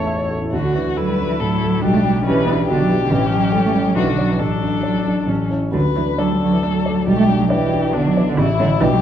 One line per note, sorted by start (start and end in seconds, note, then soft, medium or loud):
0.00 0.49 A1 medium
0.00 0.56 E2 soft
0.00 0.55 C#4 soft
0.00 0.42 E4 soft
0.00 0.30 A4 soft
0.00 0.18 C#5 soft
0.00 0.30 C#5 medium
0.00 0.31 C#5 soft
0.00 0.07 E5 soft
0.00 0.14 A5 soft
0.07 0.26 E5 soft
0.18 0.37 C#5 soft
0.30 0.49 A4 soft
0.42 0.53 E4 soft
0.52 1.79 D2 soft
0.52 0.76 D3 medium
0.52 0.98 F#4 soft
0.75 0.96 E3 medium
0.75 1.10 D4 soft
0.97 1.10 F#3 medium
0.97 1.84 E4 soft
0.97 1.32 A4 soft
0.97 1.41 B4 medium
1.09 1.20 G3 soft
1.18 1.29 F#3 medium
1.18 1.54 D4 soft
1.29 1.34 E3 medium
1.40 1.75 A2 soft
1.40 1.85 F#3 medium
1.40 1.83 A4 soft
1.64 1.84 A4 soft
1.82 3.08 B1 medium
1.82 1.97 G3 medium
1.82 2.24 D4 soft
1.82 2.25 G4 medium
1.95 2.03 A3 medium
2.04 2.18 G3 medium
2.04 2.39 D4 soft
2.16 2.25 F#3 medium
2.25 2.68 E3 medium
2.25 2.45 C#4 medium
2.25 2.61 G4 soft
2.25 2.68 B4 medium
2.46 2.54 B3 medium
2.46 2.82 D4 soft
2.68 3.03 B2 soft
2.68 2.81 D3 medium
2.68 3.10 D4 soft
2.68 3.94 G4 medium
2.79 2.90 F#3 medium
2.89 3.00 E3 medium
2.89 3.12 G4 soft
3.02 3.13 D3 medium
3.10 3.94 A1 medium
3.10 3.32 E3 medium
3.10 3.97 C#4 medium
3.31 3.53 F#3 medium
3.31 3.66 C#4 soft
3.52 3.59 G3 medium
3.52 3.87 A4 soft
3.66 3.75 A3 medium
3.74 3.79 G3 medium
3.74 3.96 C#4 soft
3.86 3.96 F#3 medium
3.96 4.39 B1 medium
3.96 4.09 E3 medium
3.96 4.40 D4 soft
3.96 4.41 F#4 medium
4.08 4.21 D3 medium
4.17 4.33 F#3 medium
4.17 4.38 D4 soft
4.17 4.38 D5 soft
4.31 4.43 E3 medium
4.38 5.25 A1 soft
4.38 5.30 F#3 medium
4.38 5.31 D4 soft
4.38 5.52 A4 soft
4.62 4.98 D4 soft
4.83 5.20 D5 soft
5.06 5.29 D4 soft
5.27 5.72 A1 soft
5.27 5.54 C#4 soft
5.50 5.71 E4 soft
5.50 5.72 C#5 soft
5.72 7.02 D2 soft
5.72 5.81 D3 medium
5.72 6.20 B4 medium
5.96 6.04 E3 medium
5.96 6.32 D4 soft
6.18 6.33 F#3 medium
6.18 6.52 D4 medium
6.18 7.07 A4 medium
6.18 6.54 D5 soft
6.31 6.41 G3 medium
6.40 6.55 F#3 medium
6.40 6.76 D4 soft
6.53 6.62 E3 medium
6.62 7.06 F#3 medium
6.62 6.98 A3 soft
6.62 6.96 D4 soft
6.86 7.07 D5 soft
7.07 8.34 B1 medium
7.07 7.18 G3 medium
7.07 7.49 G4 medium
7.18 7.27 A3 medium
7.28 7.32 G3 medium
7.28 7.64 D4 soft
7.40 7.51 F#3 medium
7.50 7.95 E3 medium
7.50 7.83 D4 medium
7.50 7.95 G4 medium
7.50 7.86 D5 medium
7.73 8.08 D4 soft
7.93 8.08 D3 medium
7.93 8.29 B3 soft
7.93 8.36 D4 medium
7.93 8.26 D4 medium
8.06 8.19 F#3 medium
8.17 8.28 E3 medium
8.17 8.38 D5 soft
8.29 8.38 D3 medium
8.36 8.80 A1 medium
8.36 8.46 C#3 medium
8.36 8.82 E4 medium
8.36 8.70 E4 medium
8.59 8.68 D3 medium
8.59 8.78 E4 soft
8.59 8.79 C#5 medium
8.81 9.02 B1 medium
8.81 8.85 E3 medium
8.81 9.02 D4 medium
8.81 9.02 G4 medium
8.93 8.97 F#3 medium